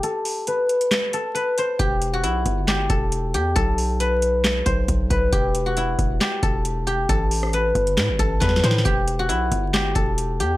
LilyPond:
<<
  \new Staff \with { instrumentName = "Guzheng" } { \time 4/4 \key e \minor \tempo 4 = 136 a'4 b'4. a'8 b'8 c''8 | g'8. fis'16 e'4 g'8 a'4 g'8 | a'4 b'4. c''4 b'8 | g'8. fis'16 e'4 g'8 a'4 g'8 |
a'4 b'4. a'8 b'8 c''8 | g'8. fis'16 e'4 g'8 a'4 g'8 | }
  \new Staff \with { instrumentName = "808-style bass" } { \clef bass \time 4/4 \key e \minor r1 | e,,4 b,,8 g,,4 e,,4 e,8 | b,,2~ b,,8 b,,8 b,,8 b,,8 | e,,4. e,,8 r8 e,,4. |
a,,4. g,,8 a,16 g,,16 a,,8 e,8 a,8 | e,,4 b,,8 g,,4 e,,4 e,8 | }
  \new DrumStaff \with { instrumentName = "Drums" } \drummode { \time 4/4 hh8 hho8 hh8 hh16 hh16 <hc hh sn>8 hh8 hh8 hh8 | <hh bd>8 hh8 hh8 <hh bd>8 <hc hh sn>8 <hh bd>8 hh8 hh8 | <hh bd>8 hho8 hh8 hh8 <hc hh sn>8 <hh bd>8 <hh bd>8 <hh bd>8 | <hh bd>8 hh8 hh8 <hh bd>8 <hc hh sn>8 <hh bd>8 hh8 hh8 |
<hh bd>8 hho16 ss16 hh8 <hh bd>16 hh16 <hc hh sn>8 <hh bd>8 \tuplet 3/2 { <hh bd sn>16 sn16 sn16 <hh sn>16 sn16 sn16 } | <hh bd>8 hh8 hh8 <hh bd>8 <hc hh sn>8 <hh bd>8 hh8 hh8 | }
>>